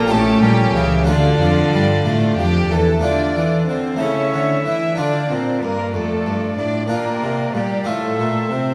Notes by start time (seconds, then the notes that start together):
Already playing: A#1 A#2 A#5
0.07 A2 A3 C#4 G4 A4
0.11 A1 A2 G4 A5
0.42 A#1 A#2 G3 G5
0.75 C#2 C#3 E3 E5
1.04 D3 D4 F4 A4
1.08 D2 D3 D4 F4 D5
1.40 F2 F3
1.73 G2 G3
2.06 A2 A3 F4
2.37 F2 F3 G4
2.70 E2 E3 A4
2.99 A3 D4 F4
3.03 D3 D4 F4 A4 D5
3.36 E3
3.68 D3 C4 C5
3.96 A3 E4 C#5 E5
4.01 C#3 C#4 E4
4.33 D3
4.65 E3 E4 E5
4.95 D3 D4 F4 D5
5.29 A#2 C4 C5
5.61 G2 A#3 A#4
5.93 F2 A3 A4 D5
6.26 G2
6.58 A2 D4 D5
6.88 A#2 A#3 D4 F4 G4 A#4 D5
7.22 C3
7.54 A#2 G3 G4
7.84 A2 A3 C4 F4 A4 E5
8.18 A#2
8.50 C3 C4 C5